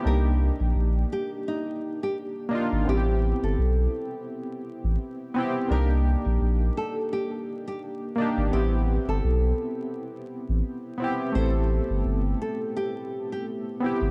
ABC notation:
X:1
M:4/4
L:1/16
Q:"Swing 16ths" 1/4=85
K:Am
V:1 name="Nylon-string guitar"
_B4 z2 G z _E3 G z4 | G3 A6 z6 z | _B4 z2 A z G3 G z4 | G3 A6 z6 z |
c4 z2 A z G3 G z4 |]
V:2 name="Synth keys"
[_B,D_EG]8 z6 [B,DEF]2 | [B,CEFG]8 z6 [B,CEG]2 | [_B,D_EG]8 z6 [B,DEG]2 | [B,CEG]8 z6 [B,CEG]2 |
[A,CEA]8 z6 [B,CEG]2 |]
V:3 name="Sub bass" clef=bass
C,,3 _B,,, B,,,2 z8 z ^G,,, | A,,,3 G,,, B,,,2 z4 z A,,, z4 | C,,3 _B,,, B,,,2 z8 z ^G,,, | A,,,3 G,,, B,,,2 z4 z A,,, z4 |
A,,,3 G,,, G,,,2 z8 z ^G,,, |]